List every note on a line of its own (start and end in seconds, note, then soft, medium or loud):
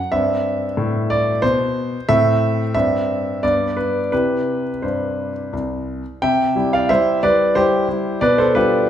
0.00 0.11 F#5 medium
0.12 0.64 G2 medium
0.12 2.04 C4 soft
0.12 1.09 E5 medium
0.77 1.30 A2 medium
1.10 1.43 D5 medium
1.42 1.95 B2 medium
1.42 2.08 C5 medium
2.09 2.62 A2 medium
2.09 2.71 C4 soft
2.09 2.73 E5 loud
2.74 3.29 G2 medium
2.74 3.39 C4 soft
2.74 3.42 E5 medium
3.43 3.98 G2 medium
3.43 4.08 B3 soft
3.43 3.77 D5 medium
3.77 4.11 B4 medium
4.12 4.62 C3 soft
4.12 4.69 E4 soft
4.12 4.69 G4 soft
4.12 4.83 B4 medium
4.82 5.32 G2 soft
4.82 5.53 C5 soft
5.53 6.01 C2 soft
6.22 6.55 C3 medium
6.22 6.70 E5 medium
6.22 6.72 G5 medium
6.55 6.86 G3 soft
6.55 6.86 E4 soft
6.55 6.86 G4 soft
6.73 6.89 D5 medium
6.73 6.89 F5 medium
6.89 7.19 G3 soft
6.89 7.20 E4 soft
6.89 7.20 G4 soft
6.89 7.21 C5 medium
6.89 7.22 E5 medium
7.23 7.53 G3 soft
7.23 7.53 E4 soft
7.23 7.53 G4 soft
7.23 7.54 B4 medium
7.23 7.56 D5 medium
7.55 7.86 G3 soft
7.55 7.86 E4 soft
7.55 7.88 G4 medium
7.55 8.22 C5 medium
7.89 8.19 G3 soft
7.89 8.19 E4 soft
7.89 8.19 G4 soft
8.21 8.54 B2 medium
8.21 8.38 B4 medium
8.21 8.38 D5 medium
8.38 8.55 A4 medium
8.38 8.55 C5 medium
8.55 8.85 G3 soft
8.55 8.86 D4 soft
8.55 8.86 F4 soft
8.55 8.87 G4 medium
8.55 8.89 B4 medium